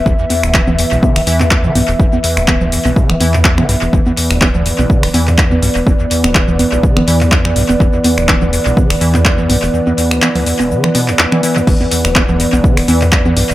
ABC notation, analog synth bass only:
X:1
M:4/4
L:1/16
Q:"Swing 16ths" 1/4=124
K:Clyd
V:1 name="Analog synth bass" clef=bass
E,,, z2 D,,,3 z B,,, z D,,, E,,3 z B,,, E,,, | E,,, z2 D,,,3 z B,,, z D,,, E,,3 z B,,, E,,, | E,,, z2 D,,,3 z B,,, z D,,, E,,3 z B,,, E,,, | E,,, z2 D,,,3 z B,,, z D,,, E,,3 z B,,, E,,, |
E,,, z2 D,,,3 z B,,, z D,,, E,,3 z B,,, E,,, | z16 | E,,, z2 D,,,3 z B,,, z D,,, E,,3 z B,,, E,,, |]